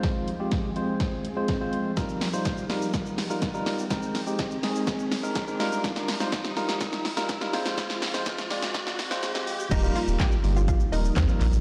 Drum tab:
CC |----------------|----------------|----------------|----------------|
HH |x-x-x-x-x-x-x-x-|x-o-x-o-x-o-x-o-|x-o-x-o-x-o-x-o-|x-o-x-o-x-o-x-o-|
SH |----------------|xxxxxxxxxxxxxxxx|xxxxxxxxxxxxxxxx|xxxxxxxxxxxxxxxx|
CP |----------------|----------------|----------------|----------------|
SD |o---o---o---o---|o-o-o-o-o-o-o-o-|o-o-o-o-o-o-o-o-|oooooooooooooooo|
BD |o---o---o---o---|o---o---o---o---|o---o---o---o---|o---o---o---o---|

CC |----------------|x---------------|
HH |x-o-x-o-x-o-x-o-|x-o-x-o-x-o-x-o-|
SH |xxxxxxxxxxxxxxxx|xxxxxxxxxxxxxxxx|
CP |----------------|----x-------x-x-|
SD |oooooooooooooo--|----o-------o---|
BD |o---o---o-------|o---o---o---o---|